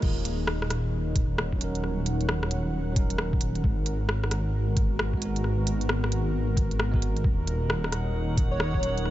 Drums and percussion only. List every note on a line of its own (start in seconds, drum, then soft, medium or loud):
0.02 kick loud
0.02 crash loud
0.25 closed hi-hat medium
0.47 cross-stick loud
0.62 cross-stick medium
0.70 cross-stick medium
0.70 closed hi-hat medium
1.15 kick loud
1.15 closed hi-hat medium
1.38 cross-stick loud
1.53 kick medium
1.61 closed hi-hat medium
1.75 closed hi-hat soft
1.84 cross-stick soft
2.06 closed hi-hat medium
2.21 closed hi-hat soft
2.29 cross-stick loud
2.43 cross-stick medium
2.51 closed hi-hat medium
2.96 kick loud
2.96 closed hi-hat medium
3.10 closed hi-hat soft
3.18 cross-stick loud
3.33 kick loud
3.41 closed hi-hat medium
3.55 closed hi-hat soft
3.64 kick loud
3.86 closed hi-hat medium
4.09 cross-stick loud
4.24 cross-stick medium
4.31 cross-stick medium
4.31 closed hi-hat medium
4.77 kick loud
4.77 closed hi-hat medium
4.99 cross-stick loud
5.14 kick medium
5.22 closed hi-hat medium
5.36 closed hi-hat soft
5.44 cross-stick soft
5.67 closed hi-hat medium
5.81 closed hi-hat soft
5.89 cross-stick loud
6.04 cross-stick medium
6.12 closed hi-hat medium
6.57 kick loud
6.57 closed hi-hat medium
6.71 closed hi-hat soft
6.80 cross-stick loud
6.94 kick loud
7.02 closed hi-hat medium
7.17 closed hi-hat soft
7.24 kick loud
7.47 closed hi-hat medium
7.70 cross-stick loud
7.84 cross-stick medium
7.92 cross-stick medium
7.92 closed hi-hat medium
8.37 kick loud
8.37 closed hi-hat medium
8.60 cross-stick loud
8.74 kick medium
8.83 closed hi-hat medium
8.98 closed hi-hat soft
9.05 cross-stick soft